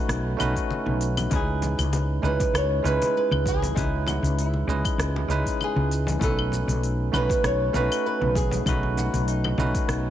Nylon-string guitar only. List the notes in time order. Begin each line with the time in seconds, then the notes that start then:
1.35 G#4
2.25 B4
2.57 C#5
2.86 B4
3.17 B4
3.48 G#4
4.09 F#4
4.40 E4
4.99 D#4
5.64 G#4
6.23 A4
7.15 B4
7.45 C#5
7.76 B4
8.06 B4
8.37 G#4
8.98 F#4
9.28 D#4